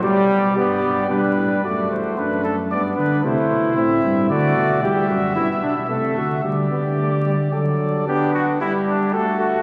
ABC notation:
X:1
M:3/4
L:1/8
Q:1/4=112
K:Ddor
V:1 name="Trumpet"
d2 d2 B2 | d c B A d B | c2 e2 d2 | [K:G] e4 e2 |
d4 d2 | G F E D A F |]
V:2 name="Flugelhorn"
G2 G2 D2 | ^F2 D2 D2 | E4 ^F2 | [K:G] G F E D A F |
G4 A2 | D2 G2 F2 |]
V:3 name="Trombone"
G,2 B,2 G,2 | A,4 B,2 | A,2 C2 A,2 | [K:G] G,2 B,2 A,2 |
G, B, A, G, F,2 | B,2 G,2 A,2 |]
V:4 name="Tuba" clef=bass
B,, B,, G,, G,, B,, A,, | ^F,, E,, F,,2 G,, D, | C, B,, A,, G,, D, B,, | [K:G] E,, F,, G,, B,, C, D, |
D,4 D,2 | z6 |]